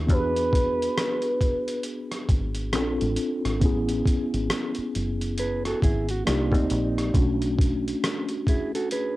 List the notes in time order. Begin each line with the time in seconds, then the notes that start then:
Already playing: D4
0.07 E2 B3 D4 F#4, kick, closed hi-hat
0.12 G4 B4
0.19 G#4
0.37 closed hi-hat
0.53 kick, closed hi-hat
0.82 closed hi-hat
0.98 cross-stick, closed hi-hat
1.22 closed hi-hat
1.41 kick, closed hi-hat
1.68 closed hi-hat
1.83 closed hi-hat
2.12 cross-stick, closed hi-hat
2.29 G#1, kick, closed hi-hat
2.55 closed hi-hat
2.73 A#1 C4 C#4 F4 A4, cross-stick, closed hi-hat
2.81 D4
3.01 A1, closed hi-hat
3.16 closed hi-hat
3.45 G#1, cross-stick, closed hi-hat
3.60 A1 B3 C#4 E4, kick, closed hi-hat
3.65 G#4
3.89 closed hi-hat
4.06 kick, closed hi-hat
4.34 G#1, closed hi-hat
4.50 cross-stick, closed hi-hat
4.75 muted fingered electric bass stroke, closed hi-hat
4.95 F#1, closed hi-hat
5.21 closed hi-hat
5.38 G#4 B4, closed hi-hat
5.65 F#4 A4, cross-stick, closed hi-hat
5.82 G#1 E4 G#4, kick, closed hi-hat
6.09 F#4, closed hi-hat
6.25 C2 A#3 D4 D#4 F4 G4 D5, cross-stick, closed hi-hat
6.52 D2 C4 D#4, kick, closed hi-hat
6.70 A#1, closed hi-hat
6.98 cross-stick, closed hi-hat
7.13 B1 A3 C#4 D4, kick, closed hi-hat
7.18 F#4
7.42 closed hi-hat
7.59 kick, closed hi-hat
7.88 closed hi-hat
8.04 cross-stick, closed hi-hat
8.29 closed hi-hat
8.47 E4 G#4, kick, closed hi-hat
8.75 F#4 A4, closed hi-hat
8.91 G#4 B4, closed hi-hat